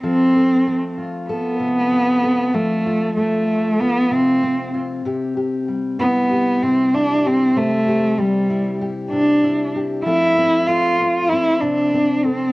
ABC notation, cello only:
X:1
M:4/4
L:1/8
Q:1/4=96
K:Flyd
V:1 name="Cello"
C3 z B,4 | A,2 A,2 B, C2 z | z3 B,2 C D C | A,2 G,2 z D2 z |
E2 F2 E D2 C |]